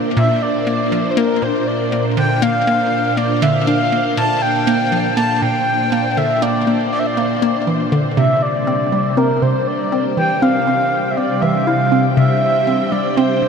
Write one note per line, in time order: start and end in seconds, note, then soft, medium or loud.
0.00 8.17 A#2 medium
0.00 0.13 A#3 medium
0.00 9.37 A#3 medium
0.00 8.17 D4 medium
0.00 13.48 C5 medium
0.00 2.09 G5 medium
0.17 0.31 A#2 loud
0.17 0.44 E5 loud
0.42 1.12 D5 loud
0.67 0.81 A#3 medium
0.92 1.13 F3 medium
1.11 1.19 C5 medium
1.17 1.38 A#3 medium
1.17 1.44 A#4 loud
1.42 1.56 A#2 medium
1.42 1.69 C5 medium
1.67 2.05 D5 medium
1.92 2.06 A#3 medium
1.92 8.17 F5 medium
2.17 2.31 D3 medium
2.17 2.44 G5 loud
2.42 2.63 A#3 medium
2.42 3.19 F5 loud
2.67 2.81 A#3 medium
3.17 3.38 A#3 medium
3.17 3.44 D5 loud
3.42 3.63 D3 loud
3.42 3.68 E5 loud
3.67 3.76 D4 medium
3.67 4.05 F5 loud
3.92 4.06 A#3 medium
4.17 4.31 A#2 loud
4.17 4.43 A5 loud
4.42 5.16 G5 loud
4.67 4.81 A#3 medium
4.92 5.13 F3 medium
5.17 5.38 A#3 medium
5.17 5.40 A5 loud
5.42 5.56 A#2 medium
5.42 6.19 G5 loud
5.92 6.06 A#3 medium
6.17 6.31 D3 medium
6.17 6.44 E5 loud
6.42 6.63 A#3 medium
6.42 6.92 D5 loud
6.67 6.81 A#3 medium
6.92 7.01 D5 medium
6.99 7.08 E5 medium
7.06 7.92 D5 loud
7.17 7.38 A#3 medium
7.42 7.56 A#3 medium
7.67 7.88 E3 medium
7.92 8.06 D3 medium
8.17 13.48 C3 medium
8.17 8.31 C3 loud
8.17 8.44 E5 loud
8.28 13.48 G3 medium
8.42 9.19 D5 loud
8.56 13.48 D4 medium
8.67 8.81 C4 medium
8.71 13.48 G5 medium
8.92 9.13 G3 medium
9.17 9.38 C4 medium
9.17 9.44 A#4 loud
9.42 9.56 C3 medium
9.42 9.69 C5 loud
9.67 10.05 D5 loud
9.92 10.06 C4 medium
10.17 10.31 E3 medium
10.17 10.43 G5 loud
10.42 10.63 C4 medium
10.42 11.12 F5 loud
10.67 10.81 C4 medium
11.11 11.18 E5 medium
11.17 11.38 C4 medium
11.17 11.43 D5 loud
11.41 11.63 E3 medium
11.41 11.68 E5 loud
11.66 11.76 E4 medium
11.66 12.04 F5 loud
11.92 12.06 C4 medium
12.16 12.31 C3 loud
12.16 12.93 E5 loud
12.67 12.81 C4 medium
12.92 13.13 G3 medium
12.92 13.18 D5 loud
13.17 13.38 C4 medium
13.17 13.48 C5 loud
13.42 13.48 C3 medium